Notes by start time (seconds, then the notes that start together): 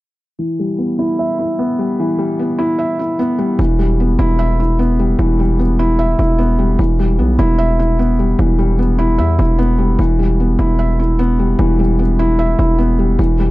0.39 E3
0.59 G3
0.78 B3
0.99 E4
1.19 E5
1.39 E4
1.59 B3
1.79 G3
2.00 E3
2.19 G3
2.39 B3
2.59 E4
2.79 E5
2.99 E4
3.19 B3
3.39 G3
3.59 E1 E3
3.79 G3
4.00 B3
4.19 E1 E4
4.39 E5
4.60 E4
4.79 B3
4.99 G3
5.19 E1 E3
5.39 G3
5.59 B3
5.79 E4
5.99 E5
6.19 E1 E4
6.38 B3
6.59 G3
6.79 E1 E3
6.99 G3
7.19 B1 B3
7.39 E1 E4
7.58 E5
7.79 E4
7.99 B3
8.19 G3
8.39 E1 E3
8.59 G3
8.79 B3
8.99 E4
9.18 E2 E5
9.39 E1 E4
9.58 B3
9.79 G3
9.99 E1 E3
10.19 G3
10.40 B3
10.59 E1 E4
10.79 E5
10.99 E4
11.19 B3
11.39 G3
11.59 E1 E3
11.79 G3
11.99 B3
12.19 E4
12.39 E5
12.59 E1 E4
12.78 B3
12.99 G3
13.19 E1 E3
13.39 G3